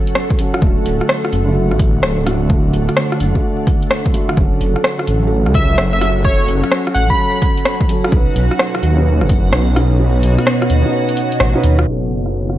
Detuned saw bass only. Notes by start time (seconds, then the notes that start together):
0.62 D1
0.86 D1
1.33 F#1
1.71 A1
2.03 D1
2.74 D1
3.21 F#1
4.37 F#1
4.61 F#1
5.08 A1
5.46 C#2
5.78 F#1
6.48 F#1
6.95 A1
8.12 B1
8.36 B1
8.82 D#2
9.21 F#1
9.53 B1
10.23 B1
10.70 D#2
11.40 A1
11.64 D#2
11.87 F#1